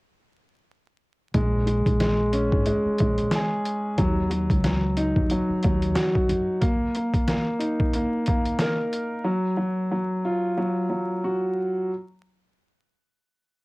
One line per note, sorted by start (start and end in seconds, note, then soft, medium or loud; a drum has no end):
1.34 1.82 A#1 loud
1.34 1.65 G#3 medium
1.34 kick loud
1.34 closed hi-hat medium
1.67 1.99 G#3 medium
1.67 closed hi-hat medium
1.86 2.48 A#1 medium
1.86 kick medium
1.86 closed hi-hat medium
2.00 2.65 G#3 medium
2.00 snare loud
2.00 closed hi-hat medium
2.32 3.65 C#4 medium
2.32 closed hi-hat medium
2.52 2.65 G#1 medium
2.52 kick medium
2.66 2.99 G#3 medium
2.66 closed hi-hat loud
2.85 muted upright bass stroke soft
2.98 3.30 A#1 medium
2.98 3.99 G#3 medium
2.98 kick medium
2.98 closed hi-hat medium
3.18 closed hi-hat medium
3.31 snare loud
3.31 closed hi-hat medium
3.35 4.00 G#4 medium
3.65 closed hi-hat medium
3.98 4.46 D#2 loud
3.98 4.29 F#3 medium
3.98 kick loud
3.98 closed hi-hat medium
4.30 4.63 F#3 medium
4.30 closed hi-hat medium
4.50 5.12 C#2 medium
4.50 kick medium
4.50 closed hi-hat medium
4.64 5.30 F#3 medium
4.64 snare loud
4.64 closed hi-hat medium
4.97 6.29 D#4 medium
4.97 closed hi-hat medium
5.16 5.29 D#2 medium
5.16 kick medium
5.30 5.63 F#3 medium
5.30 closed hi-hat loud
5.49 muted upright bass stroke soft
5.63 5.94 D#2 medium
5.63 6.62 F#3 medium
5.63 kick medium
5.63 closed hi-hat medium
5.82 closed hi-hat medium
5.95 6.61 F#4 medium
5.95 snare loud
5.95 closed hi-hat loud
6.15 kick medium
6.29 6.46 F#2 medium
6.29 closed hi-hat medium
6.61 6.95 A#3 medium
6.61 kick loud
6.61 closed hi-hat medium
6.95 7.27 A#3 medium
6.95 closed hi-hat medium
7.14 kick medium
7.14 closed hi-hat medium
7.28 7.94 A#3 medium
7.28 snare loud
7.28 closed hi-hat medium
7.59 8.92 D#4 medium
7.59 closed hi-hat medium
7.80 kick medium
7.93 8.26 A#3 medium
7.93 closed hi-hat loud
8.26 9.26 A#3 medium
8.26 kick medium
8.26 closed hi-hat medium
8.46 closed hi-hat medium
8.59 9.27 A#4 medium
8.59 snare loud
8.59 closed hi-hat medium
8.93 closed hi-hat medium
9.24 9.56 F#3 medium
9.57 9.90 F#3 medium
9.91 10.56 F#3 medium
10.25 11.57 F4 medium
10.57 10.88 F#3 medium
10.90 11.89 F#3 medium
11.24 11.90 F#4 medium